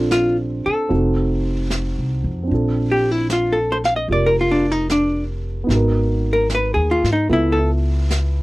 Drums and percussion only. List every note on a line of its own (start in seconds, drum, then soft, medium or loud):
0.11 snare soft
0.11 hi-hat pedal soft
0.92 brush sweep soft
1.70 snare soft
1.70 hi-hat pedal soft
2.50 brush sweep soft
3.30 snare soft
3.30 hi-hat pedal soft
3.84 snare soft
4.10 brush sweep soft
4.90 snare soft
4.90 hi-hat pedal soft
5.70 brush sweep soft
5.70 snare soft
6.50 snare soft
6.50 hi-hat pedal soft
7.04 snare soft
7.31 brush sweep soft
8.11 snare soft
8.11 hi-hat pedal soft